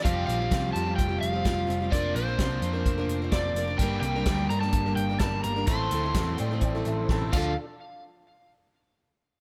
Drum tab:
CC |----------------|----------------|----------------|--------------x-|
HH |x-x-x-x-x-x-x-x-|x-x-x-x-x-x-x-x-|x-x-x-x-x-x-x-x-|x-x-x-x-x-x-----|
SD |----o-------o---|----o-------o---|----o--o----o---|----o-------o---|
T2 |----------------|----------------|----------------|-------------o--|
BD |o---o---o---o---|o---o---o---o---|o---o---o---o---|o---o---o---o-o-|

CC |----------------|
HH |----------------|
SD |----------------|
T2 |----------------|
BD |----------------|